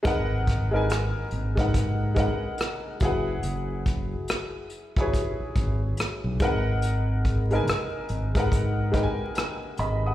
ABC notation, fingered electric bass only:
X:1
M:4/4
L:1/16
Q:"Swing 16ths" 1/4=71
K:G#m
V:1 name="Fingered electric bass" clef=bass
G,,,4- G,,, z G,,, G,,4 z3 F,,,2 | F,,,4 z6 G,,,2 z B,,, G,,,2- | G,,,4- G,,, z G,,, G,,4 z3 G,,,2 |]